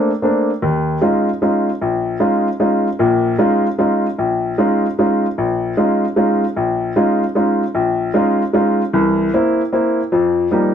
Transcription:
upright piano
0.22 A3 A#3 C4 D4
0.62 D#2
1.01 G#3 C#4 D#4 F4
1.42 G#3 C#4 D#4 F4
1.81 A#1
2.20 G#3 C#4 D#4 F4
2.60 G#3 C#4 D#4 F4
2.99 A#1 A#2
3.38 G#3 C#4 D#4 F4
3.78 G#3 C#4 D#4 F4
4.18 A#1
4.58 G#3 C#4 D#4 F4
4.99 G#3 C#4 D#4 F4
5.38 A#1
5.77 G#3 C#4 D#4 F4
6.16 G#3 C#4 D#4 F4
6.56 A#1
6.96 G#3 C#4 D#4 F4
7.35 G#3 C#4 D#4 F4
7.75 A#1
8.14 G#3 C#4 D#4 F4
8.53 G#3 C#4 D#4 F4
8.93 C2 E3
9.34 A#3 C4 E4
9.73 A#3 C4 E4
10.12 F2 F3
10.51 F3 G3 A#3 D#4

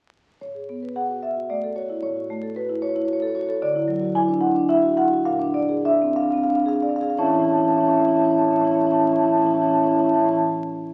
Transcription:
marimba
0.41 A2 C#5
0.55 G#4
0.69 B3
0.83 B4
0.96 G#4 F#5
1.10 F#4
1.23 F#2 E5
1.37 F#4
1.50 A3 D5
1.64 A4
1.76 F#4 C#5
1.90 E4
2.03 A2 C#5
2.16 F#4
2.30 A3
2.43 A4
2.56 F#4 B4
2.69 E4
2.82 F#4 C#5
2.89 C#5
2.96 E4 C#5
3.05 F#4 C#5
3.13 C#5
3.21 A4 C#5
3.27 C#5
3.35 F#4 C#5
3.43 C#5
3.49 A4 C#5
3.62 D3 D5
3.76 E4
3.88 F#3
4.01 F#4
4.15 E4 G#5
4.28 D4
4.41 E4 F#5
4.55 D4
4.69 E4 E5
4.97 E4 F#5
5.11 F#4
5.25 A#2 F5
5.39 D4
5.54 D5
5.69 G#4
5.85 D4 E5
6.02 C4
6.16 D4 F5
6.23 F5
6.31 C4 F5
6.37 F5
6.44 F5
6.49 D4 F5
6.56 F5
6.62 F5
6.66 G#4 F5
6.75 F5
6.82 D5 F5
6.89 F5
6.96 F5
7.01 G#4 F5
7.10 F5
7.18 A2 E3 C#4 E4 C#5 E5 A5
7.25 A2 E3 C#4 E4 C#5 E5 A5
7.32 C#4 E4 C#5 E5 A5
7.36 A2 E3 A5
7.41 E3 C#4 E4 C#5 E5
7.45 C#5 E5 A5
7.50 A2 E3 C#4 E4 A5
7.55 E4 C#5 E5
7.60 A2 E3 C#4 C#5 E5 A5
7.65 C#4 E4 A5
7.69 A2 E3 E4 C#5 E5
7.75 A2 E3 C#4 C#5 E5 A5
7.80 E4 E5 A5
7.85 A2 E3 C#4 E4 C#5 E5
7.90 C#4 E4 C#5 A5
7.95 E3 E5 A5
8.00 A2 C#4 E4 C#5 E5
8.04 E3 E5 A5
8.08 A2 C#4 E4 C#5 A5
8.15 E3 C#4 E4 C#5 E5 A5
8.20 A2 E3 C#5 E5
8.25 C#4 E4 A5
8.30 A2 E3 C#4 E4 C#5 E5 A5
8.37 E3 E4 C#5 E5 A5
8.41 A2 C#4 C#5 E5 A5
8.48 A2 C#4 E4 E5 A5
8.52 C#5
8.57 E3 C#4 E4 C#5 E5 A5
8.61 A2 E4 A5
8.66 E3 C#4 C#5 E5
8.71 A2 E3 E4 C#5 E5 A5
8.75 C#4 A5
8.80 A2 E3 E4 C#5 E5
8.85 C#4 E4 E5 A5
8.89 A2 E3 C#4 C#5 A5
8.93 E4 C#5 E5
8.99 A2 E3 C#4 E4 E5 A5
9.03 C#5 A5
9.07 E3 C#4 E4 C#5 E5
9.12 A2 E5 A5
9.16 E3 C#4 E4 C#5 A5
9.22 A2 E4 C#5 E5 A5
9.28 E3 C#4 E4 E5
9.32 A2 C#5 A5
9.37 E3 C#4 E4 C#5 E5 A5
9.44 A2 E3 C#4 E4 C#5 E5 A5
9.51 A2 E3 C#4 E4 E5 A5
9.55 C#5 E5
9.60 E3 C#4 E4 C#5 A5
9.65 A2 E4 E5 A5
9.70 E3 C#4 C#5 E5 A5
9.74 A2 E4
9.79 E3 C#4 C#5 E5 A5
9.83 A2 C#4 E4 C#5 E5 A5
9.89 E3 E4 C#5
9.94 A2 C#4 E5 A5
9.98 E3 E4 C#5 E5 A5
10.03 A2 E3 C#4 E4 E5
10.07 C#4 C#5 A5
10.14 A2 E3 E4 C#5 E5 A5
10.20 C#4 E4 C#5 E5 A5
10.25 A2 E3 E4 C#5 E5
10.30 E3 C#4 A5
10.34 E5 A5

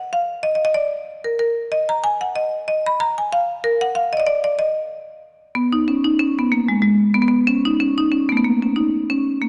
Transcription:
marimba
Already playing: F#5
0.13 F5
0.43 D#5
0.55 D#5
0.65 D#5
0.74 D5
1.24 A#4
1.39 A#4
1.72 D#5
1.89 A#5
2.04 G#5
2.21 F#5
2.36 D#5
2.68 D#5
2.86 B5
3.00 A#5
3.18 G#5
3.33 F5
3.64 A#4
3.81 F#5
3.95 F5
4.13 D#5
4.17 D5 D#5
4.27 D5
4.44 D5
4.59 D#5
5.55 B3
5.72 D#4
5.88 C#4
6.05 D#4
6.19 C#4
6.38 B3
6.52 A#3
6.68 G#3
6.82 G#3
7.14 B3
7.22 B3
7.28 B3
7.47 C#4
7.65 D#4
7.80 C#4
7.98 D#4
8.12 C#4
8.29 A3 B3
8.37 B3
8.44 A#3
8.62 C#4
8.76 D#4
9.10 C#4
9.42 A#3

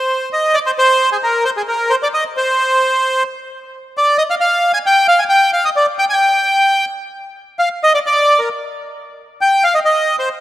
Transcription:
bandoneon
Already playing: C5
0.33 D#5
0.54 D5
0.66 C5
0.78 C5
1.12 G#4
1.23 A#4
1.45 C5
1.57 G#4
1.68 A#4
1.90 C5
2.03 D5
2.14 D#5
2.37 C5
3.98 D5
4.18 D#5
4.30 F5
4.41 F5
4.73 G#5
4.86 G5
5.08 F5
5.19 G#5
5.29 G5
5.53 F5
5.65 D#5
5.76 D5
5.99 G5
6.10 G5 G#5
7.59 F5
7.83 D#5
7.94 D5
8.06 D5
8.39 A#4
9.41 G5
9.64 F5
9.75 D#5
9.85 D#5
10.19 C5

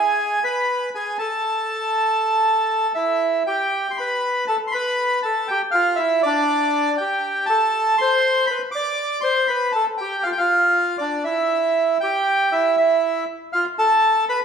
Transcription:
bandoneon
Already playing: G#4 G#5
0.44 B4 B5
0.95 G#4 G#5
1.18 A4 A5
2.95 E4 E5
3.47 G4 G5
3.91 C6
3.97 B4 B5
4.47 A4 A5
4.67 C6
4.72 B4 B5
5.23 A4 A5
5.48 G4 G5
5.71 F4 F5
5.96 E4 E5
6.23 D4 D5
6.98 G4 G5
7.46 A4 A5
7.98 C5 C6
8.47 B5
8.51 B4
8.71 D6
8.76 D5
9.21 C5 C6
9.48 B4 B5
9.72 A4 A5
9.97 G4 G5
10.23 F4 F5
10.32 G5
10.38 F4 F5
10.98 D4 D5
11.24 E4 E5
12.01 G4 G5
12.52 E4 E5
12.77 E4 E5
13.53 F4 F5
13.79 A4 A5
14.29 B4 B5

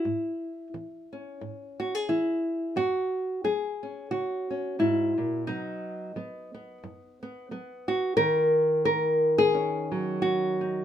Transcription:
nylon-string guitar
Already playing: E4
0.05 G#2
0.74 E3
1.13 C#4
1.41 G#2
1.80 F#4
1.95 G#4
2.09 E3 E4
2.76 F#2 F#4
3.44 F#3 G#4
3.83 C#4
4.11 C#3 F#4
4.50 C#4
4.79 G#2 E4
5.18 A#2
5.47 B2 F#3 B3 D#4
6.16 F#3 B3
6.54 B3
6.84 F#2
7.23 B3
7.51 F#3 B3
7.88 F#4
8.17 D#3 A#4
8.85 A#4
9.38 G#4
9.54 C#4
9.92 F#3
10.22 F#4
10.61 D#4

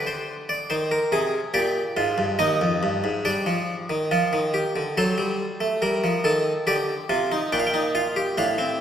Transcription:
harpsichord
Already playing: D3 D5
0.07 C5
0.49 D5
0.70 D#3 C5
0.91 A#4
1.12 C3 G#4
1.54 A#2 G4 D5
1.97 G#2 F4
2.18 G2
2.39 D#2 D#4 D#5
2.61 F2
2.83 G2
3.04 G#2
3.25 G3 D4 D5
3.46 F3
3.90 D#3
4.11 F3 F4
4.33 D#3
4.54 G4
4.76 D3
4.97 F#3 A4 C5
5.18 G3
5.61 A3
5.82 G3 A#4
6.04 F3
6.24 D#3 A4
6.67 D3 G4 D5
7.10 C3 F4
7.31 D#4
7.52 A#2 D4 G5
7.59 F5
7.67 G5
7.74 D#4
7.95 F4 F5
8.16 G4
8.38 A2 D4 F5
8.58 C4

